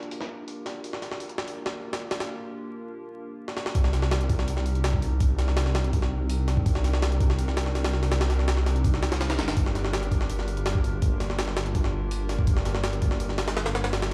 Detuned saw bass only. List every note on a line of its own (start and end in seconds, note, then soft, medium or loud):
3.75 5.19 C2 loud
5.20 6.64 C2 loud
6.66 7.37 C2 loud
7.38 8.10 C2 medium
8.11 9.40 C2 loud
9.39 9.55 G1 medium
9.57 11.01 G1 loud
11.02 12.46 G1 loud
12.47 13.19 G1 loud
13.20 13.92 G1 medium
13.93 14.14 G1 loud